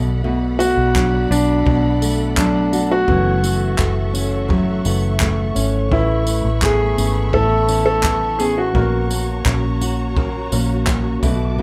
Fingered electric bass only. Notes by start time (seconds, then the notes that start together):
Already playing: B1
0.77 B1
1.30 B1
1.66 B1
3.08 F#1
3.79 F#1
4.86 F#1
5.56 G#1
5.92 A1
6.44 A1
6.98 G#1
7.33 A1
8.75 A#1
9.46 A#1
10.52 A#1
11.22 B1